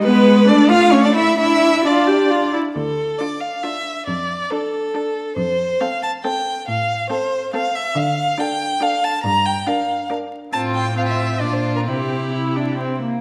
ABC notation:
X:1
M:3/4
L:1/16
Q:1/4=138
K:Dm
V:1 name="Violin"
=B4 d2 f2 ^c d e2 | e4 d6 z2 | A4 d2 f2 e4 | d4 A8 |
c4 f2 a2 g4 | f4 c4 f2 e2 | [K:F] f4 g4 f2 a2 | b2 g2 f4 z4 |
a2 g2 f e3 d c2 B | G8 z4 |]
V:2 name="Violin"
=B4 d2 f2 ^c d e2 | e4 d6 z2 | z4 F4 F4 | z4 A4 A4 |
z4 A4 A4 | z4 A4 A4 | [K:F] z4 A4 A4 | z4 B4 B4 |
F4 F4 F4 | E8- E2 z2 |]
V:3 name="Viola"
^G,4 A,4 A,4 | D4 F2 G2 F2 E2 | z4 D4 D4 | z4 D4 D4 |
z4 C4 C4 | z4 C4 C4 | [K:F] z4 D4 D4 | z4 D4 D4 |
C4 C4 D4 | C4 E2 D2 C2 B,2 |]
V:4 name="Cello" clef=bass
=B,4 D2 F2 ^C D E2 | E4 D6 z2 | D,,4 z8 | F,,4 z8 |
F,,4 z8 | A,,4 z8 | [K:F] D,4 z8 | G,,4 z8 |
A,,8 B,,4 | C,8- C,2 z2 |]